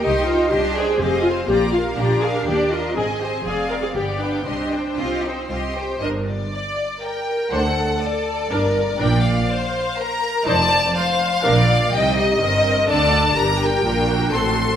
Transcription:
<<
  \new Staff \with { instrumentName = "Violin section" } { \time 3/4 \key c \minor \tempo 4 = 122 c'''8 g''8 c'''8 g''8 f''8 aes''8 | bes''8 f''8 bes''8 f''8 d''8 ees''8 | aes''8 ees''8 aes''8 f''8 g''8 f''8 | c'''8 g''8 c'''8 g''8 c'''8 g''8 |
\key g \minor ees''8 d''4. g''4 | fis''4 d''2 | g''8 f''4. bes''4 | a''4 f''2 |
g''8 ees''4. a''4 | bes''8 g''4. c'''4 | }
  \new Staff \with { instrumentName = "Violin section" } { \time 3/4 \key c \minor <g' ees''>8 c''8 <g' ees''>8 c''8 <aes' ees''>8 <c'' f''>8 | <f' d''>8 <bes' f''>8 <f' d''>8 <bes' f''>8 <g' d''>8 <bes' ees''>8 | <aes' ees''>8 <c'' aes''>8 <d'' f''>8 <d'' f''>8 <g' d''>8 <b' g''>8 | <g' ees''>8 c''8 <g' ees''>8 c''8 <g' ees''>8 c''8 |
\key g \minor r4 d''4 bes'4 | a'4 a'4 bes'4 | d''4 c''4 bes'4 | d''4 c''4 d''4 |
ees''4 ees''4 d''4 | bes'2 a'4 | }
  \new Staff \with { instrumentName = "Viola section" } { \time 3/4 \key c \minor << { g'8 f'8 g'8 aes'8 g'8 f'8 | g'8 f'8 g'8 aes'8 g'8 f'8 | aes'8 g'8 aes'8 bes'16 aes'16 g'8 d'8 | d'4 c'4. r8 |
\key g \minor bes'8 r2 r8 | c''8 r4. bes'8 r8 | bes'8 r2 r8 | c''8 r4. bes'8 r8 |
g'4 bes'4 a'4 | g'4 f'8 fis'4. | } \\ { r2. | r2. | r2. | r2. |
d'8 r2 r8 | d'8 r4. d'8 r8 | d'8 r2 r8 | ees'8 r4. d'8 r8 |
ees'4 c'4 d'8 d'8~ | d'4 d'4 c'4 | } >> }
  \new Staff \with { instrumentName = "Cello section" } { \time 3/4 \key c \minor ees'4 d'4 c'4 | bes4 d'2 | c'4 c'4 b4 | c'4 f'8 ees'8 f'8 g'8 |
\key g \minor g,4 r2 | d,4 r4 g,4 | bes,4 r2 | f,4 r4 bes,4 |
c4 g,4 d4 | g,4 bes,4 a,4 | }
  \new Staff \with { instrumentName = "Double bass section" } { \clef bass \time 3/4 \key c \minor c,4 c,4 f,,4 | bes,,4 bes,,4 ees,4 | aes,,4 f,,4 g,,4 | c,4 c,4 c,4 |
\key g \minor g,,4 r2 | d,4 r4 g,,4 | bes,,4 r2 | f,,4 r4 bes,,4 |
c,4 g,,4 d,4 | g,,4 bes,,4 a,,4 | }
>>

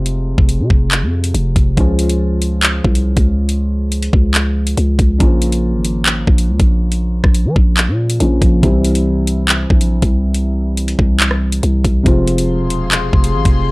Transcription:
<<
  \new Staff \with { instrumentName = "Analog synth pad" } { \time 4/4 \key f \minor \tempo 4 = 140 r1 | r1 | r1 | r1 |
r1 | r1 | r1 | <aes' f'' c'''>1 | }
  \new Staff \with { instrumentName = "Felt piano" } { \clef bass \time 4/4 \key f \minor <c f aes c' f'>1 | <f aes des' f'>1~ | <f aes des' f'>1 | <des f bes des' f'>1~ |
<des f bes des' f'>2. <des f bes des' f'>4 | <c e g c' e'>1~ | <c e g c' e'>1 | <c f aes c' f'>1 | }
  \new Staff \with { instrumentName = "808-style bass" } { \clef bass \time 4/4 \key f \minor f,,8. f,,8 c16 f,,8. f,8. f,,8 f,,8 | des,2~ des,8 c,8. des,8.~ | des,4. des,4. des,8 des,8 | bes,,4~ bes,,16 aes,,4~ aes,,16 bes,,8 des,16 bes,,8.~ |
bes,,8. bes,,8 f16 bes,,8. bes,8. bes,,8 bes,,8 | c,2~ c,8 bes,,8. c,8.~ | c,4. c,4. c,8 c,8 | f,,4~ f,,16 e,,4~ e,,16 f,,8 aes,,16 f,,8. | }
  \new DrumStaff \with { instrumentName = "Drums" } \drummode { \time 4/4 hh8. bd16 hh8 bd8 <hc hh>8. hh16 hh8 <hh bd>8 | <hh bd>8 hh16 hh16 r8 hh8 <hc hh>8 bd16 hh16 r16 <hh bd>8. | hh4 hh16 hh16 bd8 <hc hh>8. hh16 hh8 <hh bd>8 | <hh bd>8 hh16 hh16 r8 hh8 <hc hh>8 bd16 hh16 r16 <hh bd>8. |
hh8. <bd ss>16 hh8 bd8 <hc hh>8. hh16 hh8 <hh bd>8 | <hh bd>8 hh16 hh16 r8 hh8 <hc hh>8 bd16 hh16 r16 <hh bd>8. | hh4 hh16 hh16 bd8 <hc hh>16 ss8 hh16 hh8 <hh bd>8 | <hh bd>8 hh16 hh16 r8 hh8 <hc hh>8 bd16 hh16 r16 <hh bd>8. | }
>>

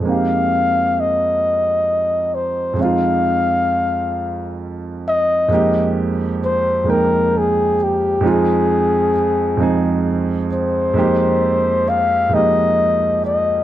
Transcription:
<<
  \new Staff \with { instrumentName = "Flugelhorn" } { \time 6/8 \key f \minor \tempo 4. = 44 f''4 ees''4. c''8 | f''2 r8 ees''8~ | ees''8 r8 c''8 bes'8 aes'8 g'8 | aes'2 r8 c''8~ |
c''4 f''8 ees''4 ees''8 | }
  \new Staff \with { instrumentName = "Grand piano" } { \time 6/8 \key f \minor <f, aes bes c' ees' g'>2. | <f, aes c' ees' f'>2. | <f, aes bes ees' g'>4 r8 <f, aes bes ees' g''>4 r8 | <f, aes c' ees' f'>4 r8 <f, aes c' ees' aes'>4 r8 |
<f, aes bes ees' g'>4 r8 <f, aes bes ees' g'>4 r8 | }
>>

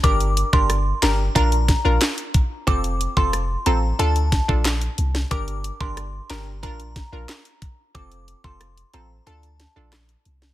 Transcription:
<<
  \new Staff \with { instrumentName = "Synth bell" } { \time 4/4 \key f \major \tempo 4 = 91 d'''16 r8 c'''16 r8 bes''16 r16 bes''8. r4 r16 | d'''16 r8 c'''16 r8 bes''16 r16 a''8. r4 r16 | d'''16 r8 c'''16 r8 bes''16 r16 bes''8. r4 r16 | d'''16 r8 c'''16 r8 bes''16 r16 a''8. r4 r16 | }
  \new Staff \with { instrumentName = "Synth pluck" } { \time 4/4 \key f \major <d' g' bes'>8. <d' g' bes'>16 r8 <d' g' bes'>16 r16 <d' f' bes'>16 r8 <d' f' bes'>16 r4 | <c' f' a'>8. <c' f' a'>16 r8 <c' f' a'>16 r16 <d' f' a'>16 r8 <d' f' a'>16 r4 | <d' g' bes'>8. <d' g' bes'>16 r8 <d' g' bes'>16 r16 <d' f' bes'>16 r8 <d' f' bes'>16 r4 | <c' f' a'>8. <c' f' a'>16 r8 <c' f' a'>16 r16 <d' f' a'>16 r8 <d' f' a'>16 r4 | }
  \new Staff \with { instrumentName = "808-style bass" } { \clef bass \time 4/4 \key f \major g,,8. g,,8. g,,8 bes,,8. bes,,16 r4 | f,,8. f,,8. a,,8 d,8. bes,,8. c,8 | g,,8. g,,8. g,,8 bes,,8. bes,,16 r4 | f,,8. f,,8. a,,8 d,8. bes,,8. c,8 | }
  \new DrumStaff \with { instrumentName = "Drums" } \drummode { \time 4/4 <hh bd>16 hh16 hh16 bd16 <hh ss>8 <hc hh sn>8 <hh bd>16 hh16 <hh bd sn>8 <hc hh sn>16 hh16 <hh bd>8 | <hh bd>16 hh16 hh16 bd16 <hh ss>8 hh8 hh16 hh16 <hh bd sn>16 bd16 <hc hh sn>16 hh16 hh16 sn16 | <hh bd>16 hh16 hh16 bd16 <hh ss>8 <hc hh sn>8 <hh bd>16 hh16 <hh bd sn>8 <hc hh sn>16 hh16 <hh bd>8 | <hh bd>16 hh16 hh16 bd16 <hh ss>16 hh16 hh8 hh16 hh16 <hh sn>8 <hc hh ss sn>16 hh16 hh16 sn16 | }
>>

